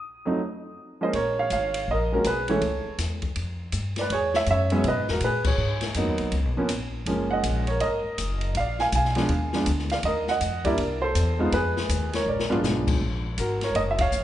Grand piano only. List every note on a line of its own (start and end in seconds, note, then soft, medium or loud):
0.00 0.97 D#6 medium
0.25 0.38 F2 medium
0.25 0.38 F#3 medium
0.25 0.38 A3 medium
0.25 0.38 C4 medium
0.25 0.39 D#4 medium
1.01 1.13 F3 medium
1.01 1.13 G#3 medium
1.01 1.13 A#3 medium
1.01 1.13 C#4 medium
1.01 1.15 C5 medium
1.01 1.14 D#5 medium
1.15 1.37 A#4 medium
1.15 1.39 C#5 medium
1.39 1.51 C#5 medium
1.39 1.51 F5 medium
1.53 1.87 C#5 medium
1.53 1.86 F5 medium
1.91 2.12 A#4 medium
1.91 2.14 D#5 medium
2.12 2.24 F3 medium
2.12 2.24 G#3 soft
2.12 2.24 A#3 medium
2.12 2.25 C#4 medium
2.12 2.26 F#4 medium
2.12 2.26 A#4 medium
2.27 2.49 G#4 medium
2.27 2.50 B4 medium
2.49 2.61 E3 medium
2.49 2.61 G#3 medium
2.49 2.62 A3 medium
2.49 2.61 C#4 medium
2.49 2.97 A4 medium
2.49 2.96 C#5 medium
3.99 4.12 B4 medium
3.99 4.12 D5 medium
4.12 4.34 G#4 medium
4.12 4.36 C#5 medium
4.36 4.42 C#5 medium
4.36 4.41 E5 medium
4.51 4.84 C#5 medium
4.51 4.87 E5 medium
4.72 4.84 F#3 medium
4.72 4.84 G#3 medium
4.72 4.84 B3 medium
4.72 4.84 C#4 medium
4.88 5.08 B4 medium
4.88 5.10 D#5 medium
5.11 5.17 F#4 medium
5.11 5.16 A#4 medium
5.24 5.45 G#4 medium
5.24 5.45 B4 medium
5.47 5.94 G#4 medium
5.47 5.93 C#5 medium
5.96 6.33 F#3 medium
5.96 6.33 A#3 medium
5.96 6.34 B3 medium
5.96 6.34 D#4 medium
6.57 6.69 F3 medium
6.57 6.69 A#3 medium
6.57 6.69 B3 medium
6.57 6.70 C#4 medium
7.07 7.63 F3 medium
7.07 7.63 G#3 medium
7.07 7.64 A#3 medium
7.07 7.63 C#4 medium
7.31 7.67 D#5 medium
7.31 7.65 F#5 medium
7.68 7.82 A#4 medium
7.68 7.82 C#5 medium
7.81 8.53 A#4 medium
7.81 8.51 D#5 medium
8.57 8.80 D5 medium
8.57 8.80 F5 medium
8.80 8.87 F5 medium
8.80 8.85 G#5 loud
8.95 9.65 F5 medium
8.95 9.64 G#5 medium
9.16 9.28 F3 medium
9.16 9.28 G#3 medium
9.16 9.29 B3 medium
9.16 9.29 D4 medium
9.54 9.66 F3 medium
9.54 9.66 G#3 medium
9.54 9.66 B3 medium
9.54 9.66 D4 medium
9.92 9.98 D5 medium
9.92 9.97 F5 medium
10.05 10.28 A#4 medium
10.05 10.29 D#5 medium
10.29 10.64 D#5 medium
10.29 10.63 F#5 loud
10.65 10.77 G3 medium
10.65 10.78 A#3 medium
10.65 10.78 D4 medium
10.65 10.78 E4 medium
10.65 11.00 A#4 medium
10.65 11.03 D5 medium
11.02 11.50 A4 medium
11.02 11.49 C5 medium
11.39 11.51 G#3 medium
11.39 11.52 B3 medium
11.39 11.52 D#4 medium
11.39 11.52 F4 medium
11.54 12.11 G#4 medium
11.54 12.16 B4 medium
12.15 12.27 A#4 medium
12.15 12.28 C#5 medium
12.29 12.86 A#4 medium
12.29 12.84 D5 medium
12.50 12.98 G#3 medium
12.50 12.98 B3 medium
12.50 12.98 D4 medium
12.50 12.99 F4 medium
13.39 13.61 F#4 medium
13.39 13.61 A#4 medium
13.64 13.76 A#4 medium
13.64 13.77 C#5 medium
13.76 13.82 A#4 medium
13.76 13.81 D#5 medium
13.91 13.99 E5 medium
14.01 14.24 C#5 medium
14.01 14.24 F5 medium